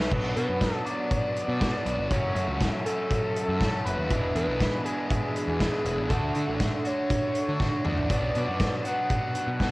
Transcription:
0.00 0.11 A3 medium
0.00 0.10 C#4 medium
0.00 0.10 A4 medium
0.00 0.33 B4 medium
0.00 0.11 C#5 medium
0.00 0.11 E5 medium
0.00 0.11 C#6 medium
0.00 snare medium
0.10 0.32 B1 medium
0.10 0.84 B2 medium
0.10 0.87 F#3 medium
0.10 0.85 B3 medium
0.10 0.85 D4 medium
0.10 0.84 F#4 medium
0.10 kick loud
0.10 crash loud
0.36 0.47 B2 medium
0.36 0.74 B4 medium
0.36 closed hi-hat soft
0.49 0.69 F#2 medium
0.61 kick medium
0.61 snare loud
0.61 closed hi-hat medium
0.74 0.87 A4 medium
0.84 1.59 B2 medium
0.84 1.60 F#3 medium
0.84 1.60 B3 medium
0.84 1.59 D4 medium
0.84 1.59 F#4 medium
0.84 1.10 D5 loud
0.84 closed hi-hat soft
1.10 2.07 D5 loud
1.10 kick loud
1.10 closed hi-hat medium
1.36 closed hi-hat medium
1.48 1.68 B2 medium
1.60 2.09 B2 medium
1.60 2.10 F#3 medium
1.60 2.10 B3 medium
1.60 2.10 D4 medium
1.60 2.11 F#4 medium
1.60 kick loud
1.60 snare loud
1.60 closed hi-hat medium
1.86 1.96 B1 medium
1.86 closed hi-hat medium
1.98 2.08 G1 medium
2.10 2.31 F#1 medium
2.10 2.84 F#2 medium
2.10 2.84 C#3 medium
2.10 2.85 F#3 medium
2.10 2.84 A3 medium
2.10 2.84 C#4 medium
2.10 2.83 F#4 medium
2.10 2.58 C#5 medium
2.10 kick loud
2.10 closed hi-hat medium
2.35 2.46 F#2 medium
2.35 closed hi-hat soft
2.48 2.68 C#2 medium
2.60 kick medium
2.60 snare medium
2.60 closed hi-hat medium
2.85 3.58 F#2 medium
2.85 3.59 C#3 medium
2.85 3.59 F#3 medium
2.85 3.59 A3 medium
2.85 3.59 C#4 medium
2.85 3.59 F#4 medium
2.85 3.82 A4 loud
2.85 closed hi-hat medium
3.11 kick loud
3.11 closed hi-hat medium
3.36 closed hi-hat medium
3.48 3.68 F#2 medium
3.59 4.08 F#2 medium
3.59 4.09 C#3 medium
3.59 4.09 F#3 medium
3.59 4.10 A3 medium
3.59 4.10 C#4 medium
3.59 4.10 F#4 medium
3.59 kick loud
3.59 snare medium
3.59 closed hi-hat medium
3.85 3.95 F#1 medium
3.85 4.32 B4 loud
3.85 closed hi-hat medium
3.98 4.08 D#2 medium
4.09 4.31 E1 medium
4.09 4.83 E2 medium
4.09 4.84 B2 medium
4.09 4.84 E3 medium
4.09 4.84 G#3 medium
4.09 4.86 D4 medium
4.09 4.84 E4 loud
4.09 kick loud
4.09 closed hi-hat medium
4.35 4.45 E2 medium
4.35 4.82 B4 loud
4.35 closed hi-hat medium
4.47 4.67 B1 medium
4.60 kick medium
4.60 snare medium
4.60 closed hi-hat medium
4.85 5.58 E2 medium
4.85 5.59 B2 medium
4.85 5.60 E3 medium
4.85 5.60 G#3 medium
4.85 5.62 D4 medium
4.85 5.59 E4 medium
4.85 5.09 G#4 medium
4.85 closed hi-hat medium
5.10 6.11 G#4 medium
5.10 kick loud
5.10 closed hi-hat medium
5.36 closed hi-hat medium
5.47 5.68 E2 medium
5.59 6.08 E2 medium
5.59 6.09 B2 medium
5.59 6.09 E3 medium
5.59 6.10 G#3 medium
5.59 6.12 D4 medium
5.59 6.10 E4 medium
5.59 kick medium
5.59 snare loud
5.59 closed hi-hat medium
5.85 5.95 E1 medium
5.85 closed hi-hat medium
5.97 6.07 A1 medium
6.09 6.30 D2 medium
6.09 6.83 D3 medium
6.09 6.86 A3 loud
6.09 6.85 D4 medium
6.09 6.84 F#4 medium
6.09 6.60 A4 medium
6.09 kick loud
6.09 closed hi-hat medium
6.35 6.46 D3 medium
6.35 closed hi-hat medium
6.48 6.68 A1 medium
6.60 kick medium
6.60 snare medium
6.60 closed hi-hat medium
6.84 7.58 D3 medium
6.84 7.60 A3 medium
6.84 7.59 D4 medium
6.84 7.62 F#4 medium
6.84 7.86 C#5 loud
6.84 closed hi-hat medium
7.10 kick loud
7.10 closed hi-hat medium
7.35 closed hi-hat medium
7.48 7.68 D3 medium
7.59 8.08 D3 medium
7.59 8.11 A3 medium
7.59 8.10 D4 medium
7.59 8.12 F#4 medium
7.59 kick medium
7.59 snare soft
7.85 7.95 D2 medium
7.85 8.35 D5 medium
7.85 mid tom medium
7.97 8.08 A1 medium
7.97 floor tom medium
8.09 8.30 B1 medium
8.09 8.83 B2 medium
8.09 8.86 F#3 medium
8.09 8.84 B3 medium
8.09 8.84 D4 medium
8.09 8.84 F#4 loud
8.09 kick loud
8.09 closed hi-hat medium
8.35 8.46 B2 medium
8.35 8.82 D5 loud
8.35 closed hi-hat medium
8.48 8.68 F#2 medium
8.60 kick loud
8.60 snare loud
8.60 closed hi-hat medium
8.84 9.59 B2 medium
8.84 9.60 F#3 medium
8.84 9.59 B3 medium
8.84 9.59 D4 medium
8.84 9.58 F#4 medium
8.84 9.09 F#5 loud
8.84 closed hi-hat medium
9.10 9.71 F#5 loud
9.10 kick loud
9.10 closed hi-hat medium
9.35 closed hi-hat medium
9.47 9.68 B2 medium
9.60 9.71 B2 medium
9.60 9.71 F#3 medium
9.60 9.71 B3 medium
9.60 9.71 D4 medium
9.60 kick loud
9.60 snare medium
9.60 closed hi-hat medium
9.64 9.71 F#4 medium

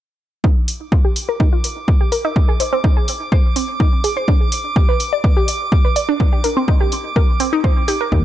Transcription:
0.44 0.49 D#4 medium
0.44 8.25 D6 medium
0.44 kick loud
0.68 open hi-hat loud
0.92 1.01 F4 medium
0.92 kick loud
1.05 1.15 G4 medium
1.16 open hi-hat loud
1.29 1.36 A#4 medium
1.40 1.49 D#4 medium
1.40 kick loud
1.53 1.63 F4 medium
1.64 open hi-hat loud
1.88 kick loud
2.01 2.11 G4 medium
2.12 2.21 A#4 medium
2.12 open hi-hat loud
2.25 2.29 D#4 loud
2.36 2.45 D#4 medium
2.36 kick loud
2.49 2.59 G#4 medium
2.60 2.72 C5 medium
2.60 open hi-hat loud
2.73 2.80 C4 loud
2.84 2.93 D#4 loud
2.84 kick loud
2.97 3.07 G#4 medium
3.08 open hi-hat loud
3.32 3.41 C5 loud
3.32 kick loud
3.56 3.68 C4 medium
3.56 open hi-hat loud
3.80 3.89 D#4 medium
3.80 kick loud
4.04 4.16 G#4 medium
4.04 open hi-hat loud
4.17 4.24 C5 medium
4.28 4.33 D4 medium
4.28 kick loud
4.52 open hi-hat loud
4.76 4.85 G4 medium
4.76 kick loud
4.89 4.99 B4 medium
5.00 open hi-hat loud
5.13 5.20 D5 medium
5.24 5.33 D4 medium
5.24 kick loud
5.37 5.47 G4 medium
5.48 open hi-hat loud
5.72 kick loud
5.85 5.95 B4 medium
5.96 6.05 D5 medium
5.96 open hi-hat loud
6.09 6.13 D4 loud
6.20 6.29 D#4 medium
6.20 kick loud
6.33 6.43 G4 medium
6.44 6.56 A#4 medium
6.44 open hi-hat loud
6.57 6.64 C4 loud
6.68 6.77 D#4 loud
6.68 kick loud
6.81 6.91 G4 medium
6.92 open hi-hat loud
7.16 7.25 A#4 loud
7.16 kick loud
7.40 7.49 C4 loud
7.40 open hi-hat loud
7.53 7.60 D#4 loud
7.64 7.69 C5 medium
7.64 kick loud
7.88 8.00 G4 medium
7.88 open hi-hat loud
8.01 8.08 A#4 medium
8.12 8.25 D#2 medium
8.12 8.17 D#4 medium
8.12 kick loud

